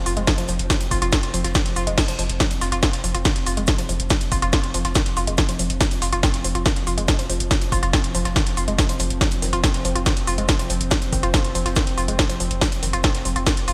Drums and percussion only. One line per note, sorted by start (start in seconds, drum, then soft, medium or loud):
0.06 open hi-hat medium
0.06 shaker medium
0.17 closed hi-hat medium
0.27 kick loud
0.27 snare loud
0.27 closed hi-hat medium
0.27 shaker medium
0.38 closed hi-hat soft
0.38 closed hi-hat medium
0.48 open hi-hat loud
0.48 shaker medium
0.59 closed hi-hat medium
0.70 kick loud
0.70 snare loud
0.70 closed hi-hat medium
0.70 shaker loud
0.80 closed hi-hat soft
0.80 closed hi-hat medium
0.91 kick medium
0.91 open hi-hat loud
0.91 shaker medium
1.02 closed hi-hat medium
1.12 kick loud
1.12 snare loud
1.12 closed hi-hat medium
1.12 shaker medium
1.23 closed hi-hat medium
1.34 open hi-hat loud
1.34 shaker medium
1.44 snare medium
1.44 closed hi-hat medium
1.55 kick loud
1.55 snare loud
1.55 closed hi-hat medium
1.55 shaker medium
1.66 snare medium
1.66 closed hi-hat medium
1.76 open hi-hat loud
1.76 shaker medium
1.87 closed hi-hat medium
1.98 kick loud
1.98 snare loud
1.98 closed hi-hat medium
1.98 crash medium
1.98 shaker medium
2.08 closed hi-hat medium
2.08 closed hi-hat soft
2.19 open hi-hat loud
2.19 shaker medium
2.29 closed hi-hat medium
2.40 kick loud
2.40 snare loud
2.40 closed hi-hat medium
2.40 shaker medium
2.51 closed hi-hat medium
2.51 closed hi-hat soft
2.61 snare medium
2.61 open hi-hat loud
2.61 shaker medium
2.72 closed hi-hat medium
2.83 kick loud
2.83 snare loud
2.83 closed hi-hat medium
2.83 shaker medium
2.93 snare medium
2.93 closed hi-hat medium
3.04 open hi-hat loud
3.04 shaker medium
3.15 closed hi-hat medium
3.25 kick loud
3.25 snare loud
3.25 closed hi-hat medium
3.25 shaker medium
3.36 snare soft
3.36 closed hi-hat medium
3.46 open hi-hat loud
3.46 shaker medium
3.57 closed hi-hat medium
3.67 kick loud
3.67 snare loud
3.67 closed hi-hat medium
3.67 shaker medium
3.78 closed hi-hat medium
3.78 closed hi-hat soft
3.89 open hi-hat loud
3.89 shaker medium
4.00 closed hi-hat medium
4.10 kick loud
4.10 snare loud
4.10 closed hi-hat medium
4.10 shaker medium
4.21 closed hi-hat soft
4.21 closed hi-hat medium
4.32 kick medium
4.32 open hi-hat loud
4.32 shaker medium
4.42 closed hi-hat medium
4.53 kick loud
4.53 snare loud
4.53 closed hi-hat medium
4.53 shaker medium
4.64 closed hi-hat medium
4.74 open hi-hat loud
4.74 shaker medium
4.85 snare soft
4.85 closed hi-hat medium
4.95 kick loud
4.95 snare loud
4.95 closed hi-hat medium
4.95 shaker loud
5.06 snare medium
5.06 closed hi-hat medium
5.17 open hi-hat loud
5.17 shaker medium
5.27 closed hi-hat medium
5.38 kick loud
5.38 snare loud
5.38 closed hi-hat medium
5.38 shaker medium
5.49 closed hi-hat soft
5.49 closed hi-hat medium
5.59 open hi-hat loud
5.59 shaker medium
5.70 closed hi-hat medium
5.80 kick loud
5.80 snare loud
5.80 closed hi-hat medium
5.80 shaker medium
5.91 closed hi-hat medium
5.91 closed hi-hat soft
6.02 snare medium
6.02 open hi-hat loud
6.02 shaker medium
6.13 closed hi-hat medium
6.23 kick loud
6.23 snare loud
6.23 closed hi-hat medium
6.23 shaker medium
6.34 snare medium
6.34 closed hi-hat medium
6.44 open hi-hat loud
6.44 shaker medium
6.55 closed hi-hat medium
6.66 kick loud
6.66 snare loud
6.66 closed hi-hat medium
6.66 shaker medium
6.76 snare medium
6.76 closed hi-hat medium
6.87 open hi-hat loud
6.87 shaker medium
6.98 closed hi-hat medium
7.08 kick loud
7.08 snare loud
7.08 closed hi-hat medium
7.08 shaker loud
7.19 closed hi-hat medium
7.19 closed hi-hat soft
7.30 open hi-hat loud
7.30 shaker medium
7.40 closed hi-hat medium
7.51 kick loud
7.51 snare loud
7.51 closed hi-hat medium
7.51 shaker medium
7.62 closed hi-hat medium
7.62 closed hi-hat soft
7.72 kick medium
7.72 open hi-hat loud
7.72 shaker medium
7.83 closed hi-hat medium
7.93 kick loud
7.93 snare loud
7.93 closed hi-hat medium
7.93 shaker medium
8.04 closed hi-hat medium
8.14 open hi-hat loud
8.14 shaker medium
8.25 snare soft
8.25 closed hi-hat medium
8.36 kick loud
8.36 snare loud
8.36 closed hi-hat medium
8.36 shaker medium
8.47 snare medium
8.47 closed hi-hat medium
8.57 open hi-hat loud
8.57 shaker medium
8.68 closed hi-hat medium
8.78 kick loud
8.78 snare loud
8.78 closed hi-hat medium
8.78 shaker medium
8.89 closed hi-hat medium
8.89 closed hi-hat soft
8.99 open hi-hat loud
8.99 shaker medium
9.10 closed hi-hat medium
9.21 kick loud
9.21 snare loud
9.21 closed hi-hat medium
9.21 shaker medium
9.31 closed hi-hat soft
9.31 closed hi-hat medium
9.42 snare soft
9.42 open hi-hat loud
9.42 shaker medium
9.53 closed hi-hat medium
9.64 kick loud
9.64 snare loud
9.64 closed hi-hat medium
9.64 shaker medium
9.74 snare medium
9.74 closed hi-hat medium
9.85 open hi-hat loud
9.85 shaker medium
9.96 closed hi-hat medium
10.06 kick loud
10.06 snare loud
10.06 closed hi-hat medium
10.06 shaker medium
10.17 snare soft
10.17 closed hi-hat medium
10.27 open hi-hat loud
10.27 shaker medium
10.38 closed hi-hat medium
10.49 kick loud
10.49 snare loud
10.49 closed hi-hat medium
10.49 shaker medium
10.59 closed hi-hat soft
10.59 closed hi-hat medium
10.70 open hi-hat loud
10.70 shaker medium
10.81 closed hi-hat medium
10.91 kick loud
10.91 snare loud
10.91 closed hi-hat medium
10.91 shaker medium
11.02 closed hi-hat soft
11.02 closed hi-hat medium
11.12 kick medium
11.12 open hi-hat loud
11.12 shaker medium
11.23 closed hi-hat medium
11.34 kick loud
11.34 snare loud
11.34 closed hi-hat medium
11.34 shaker medium
11.44 closed hi-hat medium
11.55 open hi-hat loud
11.55 shaker medium
11.66 snare soft
11.66 closed hi-hat medium
11.76 kick loud
11.76 snare loud
11.76 closed hi-hat medium
11.76 shaker medium
11.87 snare medium
11.87 closed hi-hat medium
11.98 open hi-hat loud
11.98 shaker medium
12.08 closed hi-hat medium
12.19 kick loud
12.19 snare loud
12.19 closed hi-hat medium
12.19 shaker medium
12.29 closed hi-hat soft
12.29 closed hi-hat medium
12.40 open hi-hat loud
12.40 shaker medium
12.51 closed hi-hat medium
12.61 kick loud
12.61 snare loud
12.61 closed hi-hat medium
12.61 shaker medium
12.72 closed hi-hat medium
12.72 closed hi-hat soft
12.83 snare soft
12.83 open hi-hat loud
12.83 shaker medium
12.93 closed hi-hat medium
13.03 kick loud
13.03 snare loud
13.03 closed hi-hat medium
13.03 shaker medium
13.15 snare medium
13.15 closed hi-hat medium
13.25 open hi-hat loud
13.25 shaker medium
13.36 closed hi-hat medium
13.46 kick loud
13.46 snare loud
13.46 closed hi-hat medium
13.46 shaker medium
13.57 snare soft
13.57 closed hi-hat medium
13.68 open hi-hat loud
13.68 shaker medium